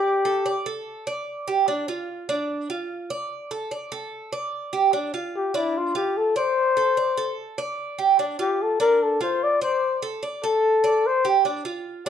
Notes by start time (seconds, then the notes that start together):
Already playing: G4 D5
0.25 A4
0.46 D5
0.66 A4
1.07 D5
1.48 G4
1.68 D4
1.88 F4
2.29 D4
2.70 F4
3.10 D5
3.51 A4
3.71 D5
3.92 A4
4.33 D5
4.73 G4
4.93 D4
5.14 F4
5.36 G4
5.54 D4 E4
5.77 F4
5.95 F4 G4
6.17 A4
6.36 C5 D5
6.77 A4
6.97 D5
7.17 A4
7.58 D5
7.98 G4
8.19 D4
8.39 F4 G4
8.62 A4
8.80 D4 A#4
9.03 A4
9.21 F4 C5
9.43 D5
9.61 C5 D5
10.02 A4
10.23 D5
10.44 A4
10.84 D5
11.07 C5
11.25 G4
11.45 D4
11.65 F4